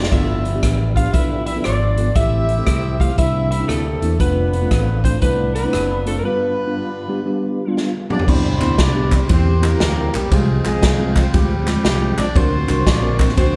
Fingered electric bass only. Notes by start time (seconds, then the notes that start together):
0.12 G1
0.63 A1
1.14 B1
1.66 G#1
2.16 A1
2.67 C2
3.18 C2
3.69 D2
4.02 E2
4.20 F1
4.71 A1
5.22 C2
5.74 F#1
8.28 C2
8.61 D2
8.79 C2
9.30 E2
9.81 D2
10.14 B1
10.32 C2
10.65 B1
10.83 C2
11.34 D2
11.84 C2
12.18 B1
12.36 D2
12.69 C2
12.87 A#1
13.37 D2